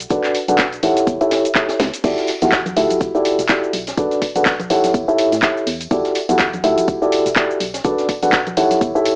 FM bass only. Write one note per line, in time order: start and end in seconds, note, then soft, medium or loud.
0.10 0.22 B1 loud
0.48 0.80 B1 loud
0.83 0.94 A1 medium
1.07 1.18 E2 loud
1.80 1.91 C#2 medium
2.04 2.15 E2 loud
2.42 2.74 E2 medium
2.77 2.88 D2 medium
3.01 3.12 B1 loud
3.39 3.47 E1 medium
3.73 3.94 B1 medium
3.98 4.09 B1 loud
4.36 4.67 B1 medium
4.70 4.81 A1 medium
4.94 5.06 E2 loud
5.32 5.41 A2 medium
5.67 5.87 E2 medium
5.91 6.02 E2 loud
6.29 6.61 E2 loud
6.64 6.75 D2 medium
6.88 6.99 B1 loud
7.26 7.34 E1 medium
7.60 7.81 B1 medium
7.85 7.96 B1 loud
8.23 8.54 B1 loud
8.57 8.68 A1 loud
8.81 8.93 E2 loud